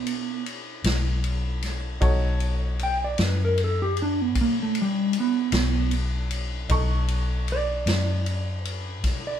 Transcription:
0.00 0.82 B2 medium
0.00 0.44 B3 loud
0.00 1.98 B3 medium
0.00 1.98 C#5 medium
0.07 ride medium
0.46 ride medium
0.84 1.98 B1 medium
0.84 snare loud
0.84 ride medium
1.24 ride medium
1.62 snare soft
1.62 ride medium
2.01 3.15 B1 medium
2.01 6.65 D#4 medium
2.01 6.66 F#4 medium
2.01 6.66 A4 medium
2.01 6.66 C#5 medium
2.01 kick loud
2.01 ride medium
2.40 ride medium
2.79 3.01 G5 medium
2.79 ride medium
3.04 3.24 D5 medium
3.18 4.35 F#2 loud
3.18 snare loud
3.18 ride medium
3.24 3.41 B4 medium
3.45 3.61 A#4 medium
3.58 ride medium
3.64 3.80 A4 medium
3.82 3.99 G4 medium
3.97 ride medium
4.02 4.21 D4 medium
4.21 4.38 B3 medium
4.35 5.49 B2 loud
4.35 kick medium
4.35 ride medium
4.41 4.58 A#3 medium
4.62 4.78 A3 medium
4.75 ride medium
4.82 5.16 G3 medium
5.13 ride medium
5.20 5.93 B3 medium
5.52 6.66 B1 loud
5.52 snare loud
5.52 ride medium
5.91 ride medium
6.31 ride medium
6.69 7.83 B1 loud
6.69 9.40 D#4 medium
6.69 9.40 A4 medium
6.69 9.40 C#6 medium
6.69 kick loud
6.69 ride medium
7.08 ride medium
7.48 ride medium
7.52 8.63 D5 loud
7.86 9.04 F#2 loud
7.86 snare loud
7.86 ride medium
8.26 ride medium
8.63 9.22 B4 loud
8.63 ride medium
9.04 9.40 B2 loud
9.04 kick medium
9.04 snare soft
9.04 ride medium
9.27 9.40 D5 medium

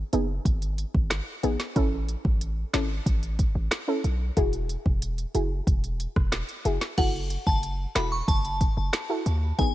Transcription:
0.13 0.39 F#1 loud
0.13 0.27 B3 medium
0.13 0.27 D#4 medium
0.13 0.28 G#4 medium
0.13 closed hi-hat medium
0.45 0.85 G#1 loud
0.45 kick medium
0.45 closed hi-hat medium
0.62 closed hi-hat medium
0.78 closed hi-hat medium
0.94 1.21 G#1 medium
0.94 kick medium
1.10 cross-stick medium
1.10 snare loud
1.10 closed hi-hat medium
1.43 1.57 A1 medium
1.43 1.58 B3 medium
1.43 1.58 D#4 medium
1.43 1.58 G#4 medium
1.43 closed hi-hat medium
1.60 snare medium
1.76 2.15 A1 loud
1.76 2.36 C#4 loud
1.76 2.36 E4 medium
1.76 2.36 A4 loud
1.76 kick loud
1.76 closed hi-hat medium
2.08 closed hi-hat medium
2.25 2.64 A1 medium
2.25 kick medium
2.41 closed hi-hat medium
2.73 3.00 G#1 medium
2.73 2.88 C#4 medium
2.73 2.88 E4 medium
2.73 2.88 A4 medium
2.73 cross-stick medium
2.73 snare loud
2.73 closed hi-hat medium
3.06 3.46 A1 loud
3.06 kick medium
3.06 closed hi-hat medium
3.23 closed hi-hat medium
3.39 kick medium
3.39 closed hi-hat medium
3.55 3.68 A1 medium
3.71 cross-stick medium
3.71 snare loud
3.71 closed hi-hat medium
3.88 4.02 C#4 medium
3.88 4.02 E4 medium
3.88 4.03 A4 medium
4.04 4.31 B1 medium
4.04 closed hi-hat medium
4.37 4.76 E1 loud
4.37 4.97 E4 loud
4.37 4.97 F#4 medium
4.37 4.97 G#4 loud
4.37 kick medium
4.37 closed hi-hat medium
4.53 closed hi-hat medium
4.69 closed hi-hat medium
4.86 5.25 E1 loud
4.86 kick medium
5.02 closed hi-hat medium
5.18 closed hi-hat soft
5.34 5.61 F#1 medium
5.34 5.49 E4 medium
5.34 5.49 F#4 medium
5.34 5.49 G#4 medium
5.34 closed hi-hat medium
5.67 6.07 E1 loud
5.67 kick medium
5.67 closed hi-hat medium
5.84 closed hi-hat medium
6.00 closed hi-hat medium
6.16 6.43 E1 medium
6.16 kick medium
6.16 cross-stick medium
6.32 cross-stick medium
6.32 snare loud
6.32 closed hi-hat medium
6.49 closed hi-hat medium
6.65 6.78 F#1 medium
6.65 6.79 E4 medium
6.65 6.80 F#4 medium
6.65 6.80 G#4 medium
6.65 closed hi-hat medium
6.81 snare medium
6.97 7.37 F#1 loud
6.97 7.58 E4 loud
6.97 7.58 F#4 medium
6.97 7.58 A4 loud
6.97 7.09 F#5 loud
6.97 kick loud
6.97 closed hi-hat medium
6.97 crash medium
7.30 closed hi-hat medium
7.47 7.86 F#1 medium
7.47 7.58 A5 medium
7.47 kick medium
7.63 closed hi-hat medium
7.95 8.22 E1 medium
7.95 8.10 E4 medium
7.95 8.10 F#4 medium
7.95 8.10 A4 medium
7.95 8.07 B5 medium
7.95 cross-stick medium
7.95 snare loud
7.95 closed hi-hat medium
8.12 8.24 C#6 medium
8.28 8.67 F#1 loud
8.28 8.74 A5 medium
8.28 kick loud
8.28 closed hi-hat medium
8.45 closed hi-hat medium
8.61 kick medium
8.61 closed hi-hat medium
8.77 8.90 F#1 medium
8.93 cross-stick medium
8.93 snare loud
8.93 closed hi-hat medium
9.09 9.24 E4 medium
9.09 9.24 F#4 medium
9.09 9.24 A4 medium
9.26 9.52 D#2 medium
9.26 closed hi-hat medium
9.58 9.74 G#1 loud
9.58 9.74 B3 medium
9.58 9.74 D#4 medium
9.58 9.74 G#4 loud
9.58 9.70 G#5 medium
9.58 kick loud
9.58 closed hi-hat medium

